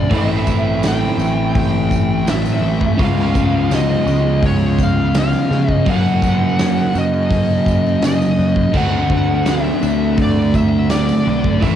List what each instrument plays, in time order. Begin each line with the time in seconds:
Already playing: lead electric guitar D5
0.11 picked electric bass A1, distorted electric guitar A2 E3 A3, overdriven electric guitar C4 E4, kick, open hi-hat, tambourine
0.16 lead electric guitar E5
0.47 distorted electric guitar E3 A3, kick, tambourine
0.83 distorted electric guitar A2 E3 A3, snare, open hi-hat, tambourine
0.87 lead electric guitar G5
1.18 picked electric bass A1, distorted electric guitar A3, tambourine
1.22 distorted electric guitar E3
1.55 kick, open hi-hat
1.59 lead electric guitar G5
1.91 kick, tambourine
2.26 distorted electric guitar A2 E3 A3, snare, open hi-hat, tambourine
2.30 lead electric guitar E5
2.46 tambourine
2.61 picked electric bass A1, distorted electric guitar E3 A3
2.81 kick
2.97 picked electric bass C#2, distorted electric guitar C#3 G#3 C#4, overdriven electric guitar F3 B3 F4, kick, open hi-hat, tambourine
3.03 lead electric guitar F5
3.33 distorted electric guitar G#3 C#4, kick, tambourine
3.70 distorted electric guitar C#3 G#3 C#4, snare, open hi-hat, tambourine
3.75 lead electric guitar D#5
4.05 picked electric bass C#2, distorted electric guitar G#3 C#4, tambourine
4.43 lead electric guitar C#5, kick, open hi-hat
4.79 kick, tambourine
4.83 lead electric guitar F5
5.14 distorted electric guitar C#3 G#3 C#4, snare, open hi-hat, tambourine
5.19 lead electric guitar F5
5.33 tambourine
5.49 picked electric bass C#3, distorted electric guitar G#3 C#4, snare
5.68 kick
5.73 lead electric guitar D#5
5.86 distorted electric guitar F#2 C#3 F#3, picked electric bass F#2, overdriven electric guitar A#3 C#4, kick, open hi-hat, tambourine
5.90 overdriven electric guitar F#4, lead electric guitar F#5
6.05 tambourine
6.22 distorted electric guitar C#3 F#3, kick, tambourine
6.57 distorted electric guitar F#2 C#3 F#3, snare, open hi-hat, tambourine
6.77 tambourine
6.93 picked electric bass F#2, distorted electric guitar C#3 F#3, tambourine
6.98 lead electric guitar D#5
7.14 tambourine
7.30 kick, open hi-hat, tambourine
7.50 tambourine
7.66 kick, tambourine
7.86 tambourine
8.01 distorted electric guitar F#2 C#3 F#3, snare, open hi-hat, tambourine
8.05 lead electric guitar D#5
8.22 tambourine
8.35 picked electric bass F#2, distorted electric guitar C#3 F#3, tambourine
8.56 kick
8.72 picked electric bass D2, distorted electric guitar D3 A3 D4, overdriven electric guitar C4, kick, crash, tambourine
8.77 overdriven electric guitar F#4, lead electric guitar F#5
9.10 distorted electric guitar A3 D4, kick
9.44 distorted electric guitar D3 A3 D4, snare, open hi-hat, tambourine
9.49 lead electric guitar E5
9.81 picked electric bass D2, distorted electric guitar A3 D4, tambourine
10.17 kick, open hi-hat
10.22 lead electric guitar D5
10.54 lead electric guitar E5, kick, tambourine
10.89 distorted electric guitar D3 A3 D4, lead electric guitar D5, snare, open hi-hat, tambourine
11.09 tambourine
11.25 picked electric bass B1, distorted electric guitar A3 D4
11.44 kick
11.61 picked electric bass A1, distorted electric guitar A2 E3 A3, overdriven electric guitar C4 E4, lead electric guitar E5, kick, open hi-hat, tambourine